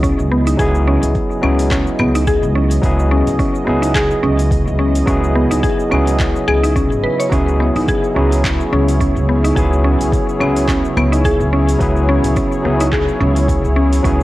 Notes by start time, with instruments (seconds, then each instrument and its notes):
Already playing: upright bass C#2, analog synth pad C#3 C#4 E4 G#4 D#5, tine electric piano F#3 B3 E4 G#4
0.03 synth pluck C#4, kick, open hi-hat, cabasa
0.19 upright bass C#2, cabasa
0.32 synth pluck B3
0.47 synth pluck D#4, open hi-hat, cabasa
0.57 upright bass C#2, tine electric piano F#3 B3 E4, synth pluck G#4, kick, open hi-hat, cabasa
0.61 tine electric piano G#4
0.75 cabasa
0.87 synth pluck C#4
1.03 upright bass C#2, open hi-hat, cabasa
1.15 kick, open hi-hat, cabasa
1.31 cabasa
1.41 upright bass C#2, tine electric piano F#3 B3 E4, synth pluck C#4, claves
1.46 tine electric piano G#4
1.59 open hi-hat, cabasa
1.71 synth pluck C#4, kick, clap, open hi-hat, cabasa
1.87 cabasa
1.99 upright bass C#2, synth pluck B3, claves
2.15 synth pluck D#4, open hi-hat, cabasa
2.27 synth pluck G#4, kick, open hi-hat, cabasa
2.43 upright bass C#2, cabasa
2.55 synth pluck C#4
2.71 open hi-hat, cabasa
2.81 upright bass C#2, tine electric piano F#3 B3 E4 G#4, kick, open hi-hat, cabasa
2.99 cabasa
3.11 synth pluck C#4
3.27 upright bass C#2, open hi-hat, cabasa
3.39 synth pluck C#4, kick, open hi-hat, cabasa
3.55 cabasa
3.65 upright bass C#2, tine electric piano F#3 B3 E4, synth pluck B3
3.69 tine electric piano G#4
3.82 synth pluck D#4, open hi-hat, cabasa
3.95 synth pluck G#4, kick, clap, open hi-hat, cabasa
4.11 cabasa
4.23 upright bass C#2, synth pluck C#4
4.39 open hi-hat, cabasa
4.51 kick, open hi-hat, cabasa
4.68 upright bass C#2, cabasa
4.79 synth pluck C#4
4.96 open hi-hat, cabasa
5.06 upright bass C#2, tine electric piano F#3 B3 E4 G#4, synth pluck C#4, kick, open hi-hat, cabasa
5.24 cabasa
5.36 synth pluck B3
5.51 upright bass C#2, synth pluck D#4, open hi-hat, cabasa
5.63 synth pluck G#4, kick, open hi-hat, cabasa
5.80 cabasa
5.90 upright bass C#2, tine electric piano F#3 B3 E4 G#4, synth pluck C#4, claves
6.07 open hi-hat, cabasa
6.20 kick, clap, open hi-hat, cabasa
6.36 cabasa
6.48 upright bass C#2, synth pluck G#4, claves
6.64 synth pluck D#4, open hi-hat, cabasa
6.76 synth pluck C#4, kick, open hi-hat, cabasa
6.92 upright bass G#1, cabasa
7.04 synth pluck B4
7.20 synth pluck C#5, open hi-hat, cabasa
7.29 upright bass C#2, tine electric piano F#3 B3 E4, synth pluck C#4, kick, open hi-hat, cabasa
7.33 tine electric piano G#4
7.48 cabasa
7.60 synth pluck B3
7.76 upright bass C#2, synth pluck D#4, open hi-hat, cabasa
7.88 synth pluck G#4, kick, open hi-hat, cabasa
8.04 analog synth pad C#5, cabasa
8.14 upright bass C#2, tine electric piano F#3 B3 E4, synth pluck C#4
8.18 tine electric piano G#4
8.32 open hi-hat, cabasa
8.44 kick, clap, open hi-hat, cabasa
8.60 cabasa
8.72 upright bass C#2, synth pluck C#4
8.88 open hi-hat, cabasa
9.00 synth pluck C#4, kick, open hi-hat, cabasa
9.16 upright bass C#2, cabasa
9.29 synth pluck B3
9.44 synth pluck D#4, open hi-hat, cabasa
9.55 upright bass C#2, tine electric piano F#3 B3 E4, synth pluck G#4, kick, open hi-hat, cabasa
9.59 tine electric piano G#4
9.73 cabasa
9.84 synth pluck C#4
10.01 upright bass C#2, open hi-hat, cabasa
10.12 kick, open hi-hat, cabasa
10.29 cabasa
10.39 upright bass C#2, tine electric piano F#3 B3 E4, synth pluck C#4, claves
10.43 tine electric piano G#4
10.57 open hi-hat, cabasa
10.68 synth pluck C#4, kick, clap, open hi-hat, cabasa
10.85 cabasa
10.97 upright bass C#2, synth pluck B3, claves
11.12 synth pluck D#4, open hi-hat, cabasa
11.24 synth pluck G#4, kick, open hi-hat, cabasa
11.40 upright bass C#2, cabasa
11.53 synth pluck C#4
11.69 open hi-hat, cabasa
11.79 upright bass C#2, tine electric piano F#3 B3 E4 G#4, kick, open hi-hat, cabasa
11.96 cabasa
12.09 synth pluck C#4
12.24 upright bass C#2, open hi-hat, cabasa
12.36 synth pluck C#4, kick, open hi-hat, cabasa
12.52 cabasa
12.62 upright bass C#2, tine electric piano F#3 B3 E4, synth pluck B3
12.66 tine electric piano G#4
12.80 synth pluck D#4, open hi-hat, cabasa
12.92 synth pluck G#4, kick, clap, open hi-hat, cabasa
13.08 cabasa
13.20 upright bass C#2, synth pluck C#4
13.36 open hi-hat, cabasa
13.48 kick, open hi-hat, cabasa
13.64 upright bass C#2, cabasa
13.76 synth pluck C#4
13.93 open hi-hat, cabasa
14.03 upright bass C#2, tine electric piano F#3 B3 E4 G#4, synth pluck C#4, kick, open hi-hat, cabasa